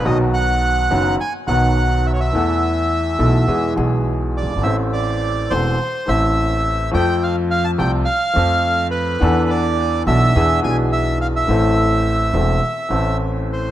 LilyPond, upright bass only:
\new Staff \with { instrumentName = "Upright bass" } { \clef bass \time 4/4 \key a \minor \tempo 4 = 105 b,,4~ b,,16. r32 fis,,16. r8 r32 b,,4~ b,,16. r32 | e,4~ e,16. r32 b,,16. r32 e,16. r32 b,,4~ b,,32 fis,,32 g,,32 gis,,32 | a,,4~ a,,16. r32 e,,16. r8 r32 a,,4~ a,,16. r32 | f,4~ f,16. r32 c,16. r8 r32 f,4~ f,16. r32 |
e,4~ e,16. r32 b,,16. r32 e,16. r32 b,,4~ b,,16. r32 | a,,4~ a,,16. r32 e,,16. r8 r32 a,,4~ a,,16. r32 | }